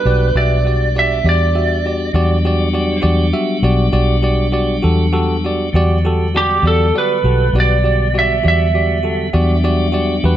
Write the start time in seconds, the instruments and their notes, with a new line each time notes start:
Already playing: tonewheel organ G3 B3 D4 F#4, lead electric guitar B4
0.05 fingered electric bass B1, tine electric piano F#4 G4 D5
0.35 fingered electric bass B1, tine electric piano F#4 G4 E5, lead electric guitar D5
0.65 tine electric piano F#4 G4 D5
0.95 tine electric piano F#4 G4 D5, lead electric guitar E5
1.24 fingered electric bass E2, tine electric piano F#4 G4 D5
1.29 lead electric guitar D5
1.55 tine electric piano F#4 G4 E5
1.86 tine electric piano F#4 G4 D5
2.13 fingered electric bass E2, tonewheel organ F#3 G3 B3 D4, tine electric piano F#4 G4 D5
2.45 tine electric piano F#4 G4 D5
2.73 tine electric piano F#4 G4 D5
3.02 fingered electric bass E2, tine electric piano F#4 G4 D5
3.33 tine electric piano F#4 G4 E5
3.63 fingered electric bass B1, tine electric piano F#4 G4 D5
3.92 fingered electric bass B1, tine electric piano F#4 G4 D5
4.23 tine electric piano F#4 G4 D5
4.52 tine electric piano F#4 G4 D5
4.82 fingered electric bass E2, tine electric piano F#4 G4 A4
5.13 tine electric piano F#4 G4 A4
5.44 tine electric piano F#4 G4 D5
5.72 fingered electric bass E2, tonewheel organ D3 F#3 G3 B3, tine electric piano F#4 G4
5.76 tine electric piano D5
6.05 tine electric piano F#4 G4 A4
6.34 tine electric piano F#4 G4 D5, lead electric guitar G4
6.63 fingered electric bass E2, tine electric piano F#4 G4 D5
6.67 lead electric guitar A4
6.94 tine electric piano F#4 G4 D5, lead electric guitar B4
7.24 fingered electric bass B1, tine electric piano F#4 G4 A4
7.53 fingered electric bass B1, tine electric piano F#4 G4 D5
7.60 lead electric guitar D5
7.84 tine electric piano F#4 G4 D5
8.14 tine electric piano F#4 G4 D5
8.19 lead electric guitar E5
8.44 fingered electric bass E2, tine electric piano F#4 G4 D5
8.48 lead electric guitar E5
8.75 tine electric piano F#4 G4 D5
9.03 tine electric piano F#4 G4 A4
9.33 fingered electric bass E2, tonewheel organ F#3 G3 B3 D4, tine electric piano F#4 G4 D5
9.64 tine electric piano F#4 G4 D5
9.92 tine electric piano F#4 G4 D5
10.24 fingered electric bass E2, tine electric piano F#4 G4 B4